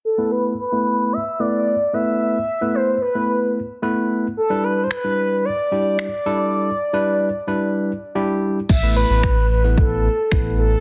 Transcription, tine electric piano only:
\new Staff \with { instrumentName = "Tine electric piano" } { \time 4/4 \key e \phrygian \tempo 4 = 111 r16 <a b e' b'>8. r16 <a b e' b'>8. r8 <a b e' b'>8. r16 <a b e' b'>8~ | <a b e' b'>16 r8 <a b e' b'>8. r16 <a b e' b'>8. r8 <a b e' b'>8. r16 | r16 <g d' e' b'>8. r16 <g d' e' b'>8. r8 <g d' e' g'>8. r16 <g d' e' a'>8~ | <g d' e' a'>16 r8 <g d' e' b'>8. r16 <g d' e' b'>8. r8 <g d' e' g'>8. r16 |
r16 <a b e' b'>4 r8 <a b e' b'>8. r8 <a b e' b'>8. r16 | }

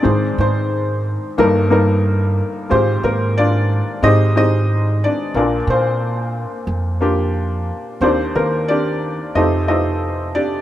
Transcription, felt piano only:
<<
  \new Staff \with { instrumentName = "Felt piano" } { \time 4/4 \key ees \major \tempo 4 = 90 << { <d' aes' d''>8 <c' ees' c''>2 r4. | <c' f' c''>8 <bes bes'>8 <d' f' d''>4 ees''8 <ees' ees''>4 <d' d''>8 | <d' bes'>8 <c' f' c''>2 r4. | <c' c''>8 <bes bes'>8 <d' g' d''>4 <ees' a' ees''>8 <ees' a' ees''>4 <d' g' d''>8 | } \\ { <ees aes c' c''>2 <g bes ees' bes'>8 <g bes ees' bes'>4. | <aes f' g'>2 <aes ees' g' c''>8 <aes ees' g' c''>4. | <bes d' f' d''>2 r8 <bes d' f' g'>4. | <bes d' g' d''>2 <a f' g' c''>8 <a f' g' c''>4. | } >> }
  \new Staff \with { instrumentName = "Felt piano" } { \clef bass \time 4/4 \key ees \major <aes,, aes,>2 <g,, g,>2 | <aes,, aes,>2 <aes,, aes,>2 | <bes,, bes,>1 | <ees, ees>2 <f,, f,>2 | }
>>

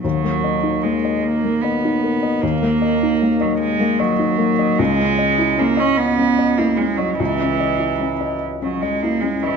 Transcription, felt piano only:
\new Staff \with { instrumentName = "Felt piano" } { \time 6/8 \key dis \phrygian \tempo 4. = 50 dis,16 ais16 dis''16 dis'16 ais16 dis''8 ais16 dis''16 dis'16 ais'16 dis''16 | dis,16 ais16 dis''16 dis'16 ais16 dis''8 ais16 dis''16 dis'16 ais16 dis''16 | cis,16 cis'16 dis''16 e'16 cis'16 dis''8 cis'16 dis''16 e'16 cis'16 dis''16 | cis,16 cis'16 dis''16 e'16 cis'16 dis''8 cis'16 dis''16 e'16 cis'16 dis''16 | }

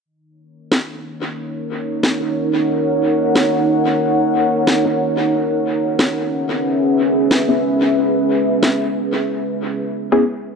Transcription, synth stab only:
\new Staff \with { instrumentName = "Synth stab" } { \time 4/4 \key dis \phrygian \tempo 4 = 91 r2. r16 <cis' dis' fis' ais'>16 r8 | r2. r16 <cis' dis' fis' ais'>16 r8 | r2. r16 <b cis' e' gis'>16 r8 | r2. r16 <b cis' e' gis'>16 r8 | }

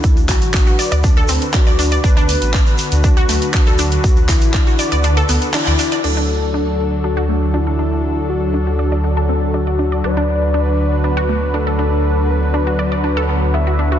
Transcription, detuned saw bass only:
\new Staff \with { instrumentName = "Detuned saw bass" } { \clef bass \time 4/4 \key d \major \tempo 4 = 120 d,8 r16 a,,8 r8 d,8 r16 d,16 r8 d,8 r16 | d,8 r16 a,,8 r8 d,8 r16 d,16 r8 d,8 r16 | d,8 r16 a,,8 r8 d,8 r16 d,16 r8 d,16 r8 | d,1~ |
d,1 | d,1~ | d,1 | }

